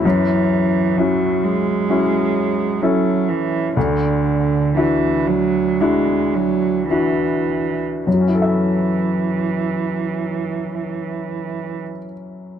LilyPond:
<<
  \new Staff \with { instrumentName = "Grand piano" } { \time 4/4 \key fis \minor \tempo 4 = 56 fis,4 <cis' e' fis'>4 <cis' e' fis'>4 <cis' e' a'>4 | d,4 <d' e' fis'>4 <d' e' fis'>4 <d' e' fis'>4 | <fis, fis cis' e' a' e''>1 | }
  \new Staff \with { instrumentName = "Cello" } { \clef bass \time 4/4 \key fis \minor e4 fis8 gis4. fis8 e8 | d4 e8 fis8 gis8 fis8 e4 | e1 | }
>>